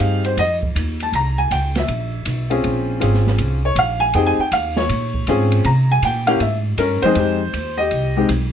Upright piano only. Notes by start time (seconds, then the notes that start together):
Already playing: C4 D#4 G4 G#4 F5
0.26 C5
0.39 D#5
1.03 A5
1.15 A#5
1.38 G#5
1.52 G5
1.78 E5
2.50 C4 C#4 F4 G#4
3.00 C4 C#4 F4 G#4
3.65 C#5
3.79 F5
4.00 G#5
4.14 C4 D#4 G4 G#4 G5
4.27 G#5
4.40 G5
4.53 F5
4.77 C#5
5.28 C4 C#4 F4 G#4
5.66 A#5
5.92 G#5
6.05 G5
6.27 A#3 C#4 E4 G4 F5
6.41 E5
6.79 C#4 A#4
7.02 F2 G#3 C4 D#4 G#4 C5
7.16 G#3 C4 D#4 G4
7.78 G4 D#5
8.16 G#3 C4 D#4 G4